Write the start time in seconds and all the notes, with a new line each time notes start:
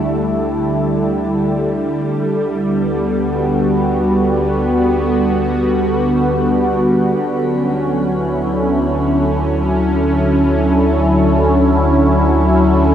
Already playing: D2 D3 G3 A3 E4 A4
2.15 D2
2.67 B3
3.21 F#4
7.19 D2 D3
7.35 F#3
7.50 C#4
8.15 E4
8.44 A4